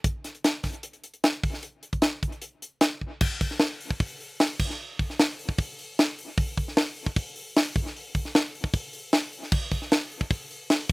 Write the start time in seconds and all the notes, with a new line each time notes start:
0.04 kick, closed hi-hat
0.24 snare, closed hi-hat
0.35 closed hi-hat
0.44 snare, closed hi-hat
0.63 kick, snare, open hi-hat
0.73 closed hi-hat
0.83 closed hi-hat
0.93 closed hi-hat
1.04 closed hi-hat
1.14 closed hi-hat
1.24 snare, closed hi-hat
1.33 closed hi-hat
1.43 kick, open hi-hat
1.54 snare
1.63 closed hi-hat
1.83 closed hi-hat
1.93 kick, closed hi-hat
2.02 snare, closed hi-hat
2.23 kick, closed hi-hat
2.32 closed hi-hat
2.42 closed hi-hat
2.62 closed hi-hat
2.81 snare, closed hi-hat
3.01 kick
3.21 kick, crash
3.41 kick, open hi-hat
3.51 snare
3.59 snare, open hi-hat
3.81 open hi-hat
3.90 kick
4.00 kick, open hi-hat
4.20 open hi-hat
4.40 snare, open hi-hat
4.59 kick, crash
4.70 snare
4.99 kick, open hi-hat
5.10 snare
5.19 snare, open hi-hat
5.39 open hi-hat
5.49 kick
5.58 kick, open hi-hat
5.79 open hi-hat
5.99 snare, open hi-hat
6.19 open hi-hat
6.38 kick, open hi-hat
6.57 kick, open hi-hat
6.68 snare
6.77 snare, open hi-hat
6.96 open hi-hat
7.06 kick
7.16 kick, open hi-hat
7.36 open hi-hat
7.56 snare, open hi-hat
7.76 kick, open hi-hat
7.86 snare
7.96 open hi-hat
8.15 kick, open hi-hat
8.25 snare
8.35 snare, open hi-hat
8.55 open hi-hat
8.64 kick
8.74 kick, open hi-hat
8.93 open hi-hat
9.13 snare, open hi-hat
9.33 open hi-hat
9.43 snare
9.52 kick, crash
9.71 kick, open hi-hat
9.82 snare
9.92 snare, open hi-hat
10.12 open hi-hat
10.21 kick
10.31 kick, open hi-hat
10.51 open hi-hat
10.70 snare, open hi-hat
10.89 open hi-hat